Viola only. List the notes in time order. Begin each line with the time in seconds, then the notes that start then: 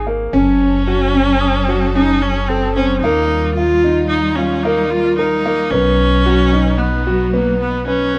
0.33 C#4
1.96 D#4
2.22 C#4
2.48 C4
2.75 C#4
3.01 D#4
3.55 F4
4.09 D#4
4.36 C#4
4.63 D#4
4.91 F4
5.18 D#4
5.71 C#4
6.78 B3
7.33 A#3
7.60 B3
7.87 C#4